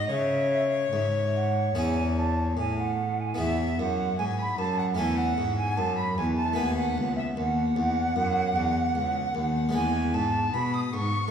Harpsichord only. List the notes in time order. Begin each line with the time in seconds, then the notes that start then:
0.10 C#3
0.93 G#2
1.75 E2 C#4 E4 G#4
2.57 A2
3.34 B3 E4 G#4
3.39 E2
3.79 F#2
4.19 G#2
4.58 F#2
4.95 A3 C#4 A4
4.99 E2
5.38 G#2
5.78 F#2
6.18 E2
6.53 A3 B3 B4
6.58 D#2
6.98 C#2
7.37 D#2
7.76 E2
8.16 F#2
8.56 E2
8.95 C#2
9.35 D#2
9.69 G#3 B3 B4
9.74 E2
10.14 G#2
10.54 B2
10.94 G#2